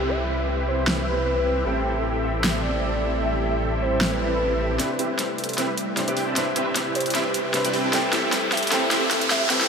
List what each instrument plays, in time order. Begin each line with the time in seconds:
Already playing: detuned saw bass C2, grand piano C3 C4 D4 E4 B4, ambient pad C3 G3 E4 G4 B4, supersaw synth C4 E4 G4 B4 E5, soft synth lead G4, downlifter
0.09 soft synth lead E5
0.68 soft synth lead C5
0.87 snare
0.98 soft synth lead B4
1.64 detuned saw bass A1, ambient pad G3 A3 E4, grand piano A3 E4 G4 B4, supersaw synth C4 E4 G4 A4 E5, soft synth lead G5
1.68 grand piano C4
2.25 soft synth lead E5
2.44 snare
2.55 soft synth lead D5
3.23 soft synth lead E5
3.81 soft synth lead C5
4.01 snare
4.12 soft synth lead B4
4.77 grand piano C3 C4 D4 E4 B4, ambient pad C3 G3 E4 G4, supersaw synth C4 E4 G4 B4 E5, snare, closed hi-hat, riser
4.99 supersaw synth C4 E4 G4 B4 E5, closed hi-hat
5.19 snare, closed hi-hat
5.38 soft synth lead A4, closed hi-hat
5.44 closed hi-hat
5.49 closed hi-hat
5.53 closed hi-hat
5.58 supersaw synth C4 E4 G4 B4 E5, snare, closed hi-hat
5.69 soft synth lead G4
5.78 closed hi-hat
5.96 grand piano C3 C4 D4 E4 C5, snare, closed hi-hat
6.08 supersaw synth C4 E4 G4 B4 D5, closed hi-hat
6.17 supersaw synth C4 E4 G4 B4 G5, open hi-hat
6.27 supersaw synth C4 E4 G4 B4 A5
6.34 grand piano C3 C4 D4 E4, supersaw synth C4 E4 G4 B4 E5, soft synth lead E5, snare, closed hi-hat
6.38 grand piano B4
6.56 supersaw synth C4 E4 G4 B4 E5, closed hi-hat
6.76 snare, closed hi-hat
6.95 soft synth lead C5, closed hi-hat
7.00 closed hi-hat
7.06 closed hi-hat
7.10 closed hi-hat
7.15 supersaw synth C4 E4 G4 B4 E5, snare, closed hi-hat
7.25 soft synth lead B4
7.34 closed hi-hat
7.53 grand piano C3 C4 D4 E4 B4, snare, closed hi-hat
7.65 supersaw synth C4 E4 G4 B4 D5, closed hi-hat
7.74 supersaw synth C4 E4 G4 B4 G5, open hi-hat
7.84 supersaw synth C4 E4 G4 B4 A5
7.91 grand piano A3 E4 G4 B4, ambient pad A3, supersaw synth C4 E4 G4 A4 E5, soft synth lead G5, snare, closed hi-hat
7.95 grand piano C5
8.13 supersaw synth C4 E4 G4 A4 E5, snare, closed hi-hat
8.32 snare, closed hi-hat
8.52 soft synth lead E5, snare, closed hi-hat
8.57 closed hi-hat
8.63 closed hi-hat
8.67 grand piano A3 E4, closed hi-hat
8.72 supersaw synth C4 E4 G4 A4 E5, grand piano G4 B4 C5, soft synth lead G5, snare, closed hi-hat
8.91 supersaw synth C4 E4 G4 A4 E5, snare, closed hi-hat
9.11 snare, closed hi-hat
9.21 closed hi-hat
9.30 soft synth lead E5, snare, open hi-hat
9.48 grand piano A3 E4 G4 B4 C5, supersaw synth C4 E4 G4 A4 E5, soft synth lead G5, snare, closed hi-hat, noise sweep
9.61 snare